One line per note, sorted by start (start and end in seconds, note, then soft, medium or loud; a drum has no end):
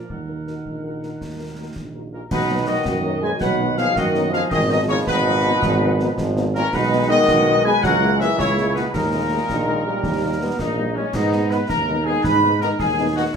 0.00 0.10 D5 soft
0.10 0.57 D#2 soft
0.10 2.13 D#3 soft
0.10 1.96 A#4 soft
0.10 1.96 F#5 soft
0.10 concert bass drum medium
0.27 0.36 D#4 soft
0.27 0.36 F#4 soft
0.27 0.34 A#4 soft
0.27 0.36 A#4 soft
0.47 0.54 D#4 soft
0.47 0.54 F#4 soft
0.47 0.54 A#4 soft
0.47 snare soft
0.65 1.12 A#1 soft
0.65 concert bass drum medium
0.84 0.91 D#4 soft
0.84 0.91 F#4 soft
0.84 0.91 A#4 soft
1.03 1.10 D#4 soft
1.03 1.09 F#4 soft
1.03 1.09 A#4 soft
1.03 snare soft
1.21 1.67 D#2 soft
1.21 concert bass drum medium
1.21 snare soft
1.38 1.46 D#4 soft
1.38 1.46 F#4 soft
1.38 1.45 A#4 soft
1.38 1.46 A#4 soft
1.56 1.65 D#4 soft
1.56 1.65 F#4 soft
1.56 1.63 A#4 soft
1.56 1.65 A#4 soft
1.76 2.22 A#1 soft
1.76 concert bass drum medium
1.76 snare soft
1.94 2.02 D#4 soft
1.94 2.02 F#4 soft
1.94 2.00 A#4 soft
1.94 2.02 A#4 soft
2.12 2.21 A#2 soft
2.12 2.19 C#4 soft
2.12 2.20 D#4 soft
2.12 2.20 F#4 soft
2.12 2.30 A#4 medium
2.12 2.21 A#4 soft
2.12 2.20 A#4 soft
2.31 2.78 B1 medium
2.31 2.69 B2 medium
2.31 4.48 D#3 medium
2.31 4.48 F#3 medium
2.31 2.65 D#4 loud
2.31 2.65 B4 medium
2.31 2.66 B4 loud
2.31 concert bass drum loud
2.31 snare medium
2.31 crash medium
2.49 2.56 F#3 medium
2.49 2.56 B3 medium
2.49 2.56 D#4 medium
2.66 3.21 D#3 medium
2.66 2.74 F#3 medium
2.66 2.74 B3 medium
2.66 2.74 D#4 medium
2.66 3.19 F#4 medium
2.66 3.19 D#5 loud
2.66 3.23 D#5 loud
2.86 3.32 F#2 medium
2.86 concert bass drum medium
2.86 snare medium
3.04 3.11 F#3 medium
3.04 3.11 B3 medium
3.04 3.11 D#4 medium
3.21 3.29 F#3 medium
3.21 3.30 G#3 loud
3.21 3.29 B3 medium
3.21 3.30 D#4 medium
3.21 3.29 B4 loud
3.21 3.30 G#5 loud
3.21 3.41 G#5 loud
3.40 3.88 B1 medium
3.40 3.78 F#3 loud
3.40 3.75 B4 medium
3.40 3.75 F#5 loud
3.40 3.78 F#5 medium
3.40 concert bass drum medium
3.40 snare medium
3.60 3.67 F#3 medium
3.60 3.66 B3 medium
3.60 3.66 D#4 medium
3.76 3.94 F3 loud
3.76 3.84 F#3 medium
3.76 3.84 B3 medium
3.76 3.85 D#4 medium
3.76 3.95 G#4 medium
3.76 3.95 F5 loud
3.76 3.96 F5 loud
3.76 snare medium
3.95 4.43 F#2 medium
3.95 4.32 D#3 loud
3.95 4.30 F#4 loud
3.95 4.31 D#5 loud
3.95 4.32 D#5 loud
3.95 concert bass drum medium
3.95 snare medium
4.15 4.22 F#3 medium
4.15 4.22 B3 medium
4.15 4.22 D#4 medium
4.15 snare medium
4.31 4.51 F3 loud
4.31 4.40 F#3 medium
4.31 4.40 B3 medium
4.31 4.40 D#4 medium
4.31 4.51 G#4 loud
4.31 4.41 F5 loud
4.31 4.41 F5 medium
4.31 snare medium
4.50 4.98 G#1 medium
4.50 6.68 D#3 medium
4.50 4.60 D#3 loud
4.50 6.68 F3 loud
4.50 4.58 G#4 loud
4.50 4.59 D#5 loud
4.50 4.69 D#5 loud
4.50 concert bass drum loud
4.50 snare medium
4.50 crash soft
4.69 4.78 D#3 medium
4.69 4.77 F3 medium
4.69 4.77 B3 medium
4.69 4.77 D#4 medium
4.69 4.77 F#4 loud
4.69 4.77 D#5 loud
4.69 4.79 D#5 loud
4.88 5.05 C#3 loud
4.88 4.95 F3 medium
4.88 4.95 B3 medium
4.88 4.95 D#4 medium
4.88 4.95 F4 medium
4.88 4.96 C#5 loud
4.88 4.97 C#5 loud
5.07 5.53 G#1 loud
5.07 6.32 B2 loud
5.07 6.33 D#4 loud
5.07 6.32 B4 loud
5.07 concert bass drum medium
5.07 snare medium
5.25 5.32 F3 medium
5.25 5.32 B3 medium
5.25 5.32 D#4 medium
5.44 5.50 F3 medium
5.44 5.51 B3 medium
5.44 5.51 D#4 medium
5.62 6.09 G#1 loud
5.62 concert bass drum loud
5.62 snare medium
5.81 5.87 F3 medium
5.81 5.87 B3 medium
5.81 5.87 D#4 medium
6.00 6.06 F3 medium
6.00 6.06 B3 medium
6.00 6.06 D#4 medium
6.00 snare medium
6.18 6.64 G#1 loud
6.18 concert bass drum medium
6.18 snare medium
6.36 6.43 F3 medium
6.36 6.43 B3 medium
6.36 6.43 D#4 medium
6.36 snare medium
6.54 6.63 A#2 loud
6.54 6.62 F3 medium
6.54 6.62 B3 medium
6.54 6.72 C#4 loud
6.54 6.62 D#4 medium
6.54 6.71 A#4 loud
6.54 6.63 A#4 loud
6.54 snare medium
6.72 7.14 B1 loud
6.72 7.07 B2 medium
6.72 7.80 D#3 loud
6.72 8.92 G#3 loud
6.72 7.08 D#4 loud
6.72 7.07 B4 medium
6.72 7.10 B4 loud
6.72 concert bass drum loud
6.72 snare medium
6.72 crash soft
6.92 6.99 G#3 medium
6.92 6.99 B3 medium
6.92 6.99 D#4 medium
7.08 7.60 D#3 loud
7.08 7.16 G#3 medium
7.08 7.16 B3 medium
7.08 7.17 D#4 medium
7.08 7.65 F#4 loud
7.08 7.60 D#5 loud
7.08 7.61 D#5 loud
7.28 7.74 B1 loud
7.28 concert bass drum medium
7.28 snare medium
7.47 7.54 G#3 medium
7.47 7.54 B3 medium
7.47 7.54 D#4 medium
7.64 7.73 G#3 loud
7.64 7.72 G#3 medium
7.64 7.72 B3 medium
7.64 7.72 D#4 medium
7.64 7.82 B4 loud
7.64 7.83 G#5 loud
7.64 7.82 G#5 loud
7.82 8.29 C#2 loud
7.82 8.94 E3 medium
7.82 8.23 F#3 loud
7.82 8.18 A#4 loud
7.82 8.19 F#5 loud
7.82 8.17 F#5 loud
7.82 concert bass drum medium
7.82 snare medium
8.02 8.09 G#3 medium
8.02 8.09 A#3 medium
8.02 8.09 E4 medium
8.19 8.40 E3 loud
8.19 8.28 G#3 medium
8.19 8.28 A#3 medium
8.19 8.27 E4 medium
8.19 8.27 G#4 loud
8.19 8.37 E5 loud
8.19 8.39 E5 loud
8.19 snare medium
8.38 8.84 C#2 medium
8.38 8.74 C#3 loud
8.38 8.73 E4 loud
8.38 8.73 C#5 loud
8.38 8.76 C#5 loud
8.38 concert bass drum medium
8.38 snare medium
8.57 8.63 G#3 medium
8.57 8.64 A#3 medium
8.57 8.63 E4 medium
8.57 snare medium
8.75 8.92 B2 medium
8.75 8.83 G#3 medium
8.75 8.83 A#3 medium
8.75 8.92 D#4 medium
8.75 8.83 E4 medium
8.75 8.92 B4 loud
8.75 8.84 B4 medium
8.75 snare medium
8.93 9.40 D#2 medium
8.93 10.92 A#2 medium
8.93 9.41 D#3 medium
8.93 9.41 G#3 medium
8.93 10.32 D#4 medium
8.93 10.55 A#4 loud
8.93 10.55 A#4 medium
8.93 concert bass drum medium
8.93 snare medium
8.93 crash soft
9.13 9.20 G#3 medium
9.13 9.20 A#3 medium
9.13 9.20 D#4 medium
9.31 9.38 G#3 medium
9.31 9.37 A#3 medium
9.31 9.38 D#4 medium
9.48 9.95 A#1 medium
9.48 9.82 D#3 medium
9.48 concert bass drum medium
9.48 snare medium
9.68 9.74 G#3 medium
9.68 9.74 A#3 medium
9.68 9.74 D#4 medium
9.85 10.36 G3 medium
9.85 9.92 G#3 medium
9.85 9.92 A#3 medium
9.85 9.92 D#4 medium
10.03 10.50 D#2 medium
10.03 concert bass drum medium
10.03 snare medium
10.22 10.29 G3 medium
10.22 10.29 A#3 medium
10.22 10.29 D#4 medium
10.41 10.48 G3 medium
10.41 10.48 A#3 medium
10.41 10.59 B3 loud
10.41 10.48 D#4 medium
10.58 11.05 A#1 medium
10.58 10.96 A#3 medium
10.58 10.93 D#4 medium
10.58 10.94 D#5 medium
10.58 concert bass drum medium
10.58 snare medium
10.77 10.84 G3 medium
10.77 10.84 A#3 medium
10.77 10.84 D#4 medium
10.95 11.02 G3 medium
10.95 11.05 G#3 medium
10.95 11.03 A#3 medium
10.95 11.14 C#4 loud
10.95 11.14 C#4 medium
10.95 11.02 D#4 medium
10.95 11.13 C#5 medium
11.13 11.60 G#2 medium
11.13 11.66 B3 medium
11.13 11.50 D#4 medium
11.13 11.51 D#4 loud
11.13 11.48 D#5 medium
11.13 concert bass drum medium
11.13 snare medium
11.13 crash medium
11.32 11.40 G#3 medium
11.32 11.40 B3 medium
11.32 11.40 D#4 medium
11.32 snare medium
11.49 11.57 D#3 medium
11.49 11.58 G#3 medium
11.49 11.58 B3 medium
11.49 11.59 D#4 medium
11.49 11.58 B4 loud
11.49 11.69 B4 loud
11.49 11.56 B5 medium
11.49 snare medium
11.67 12.16 D#2 medium
11.67 13.36 D#4 loud
11.67 12.03 A#4 loud
11.67 12.06 A#4 loud
11.67 12.04 A#5 loud
11.67 concert bass drum medium
11.67 snare medium
11.88 11.95 G#3 medium
11.88 11.95 B3 medium
11.88 11.95 D#4 medium
12.05 12.13 D#3 medium
12.05 12.14 G#3 medium
12.05 12.13 B3 medium
12.05 12.14 B3 medium
12.05 12.14 D#4 medium
12.05 12.23 G#4 medium
12.05 12.24 G#4 loud
12.05 12.25 G#5 medium
12.22 12.71 G#2 medium
12.22 12.60 B4 loud
12.22 12.61 B4 loud
12.22 12.59 B5 loud
12.22 concert bass drum medium
12.22 snare medium
12.43 12.50 G#3 medium
12.43 12.50 B3 medium
12.43 12.50 D#4 medium
12.61 12.68 D#3 medium
12.61 12.69 G#3 medium
12.61 12.67 B3 medium
12.61 12.69 B3 medium
12.61 12.69 D#4 medium
12.61 12.78 A#4 loud
12.61 12.69 A#4 loud
12.61 12.68 A#5 loud
12.61 snare medium
12.79 13.26 D#2 medium
12.79 13.16 G#4 loud
12.79 13.14 G#4 loud
12.79 13.14 G#5 loud
12.79 concert bass drum medium
12.79 snare medium
12.99 13.05 G#3 medium
12.99 13.05 B3 medium
12.99 13.05 D#4 medium
13.16 13.22 D#3 medium
13.16 13.23 G#3 medium
13.16 13.22 B3 medium
13.16 13.23 B3 medium
13.16 13.23 D#4 medium
13.16 13.24 F#4 loud
13.16 13.34 F#4 medium
13.16 13.23 F#5 medium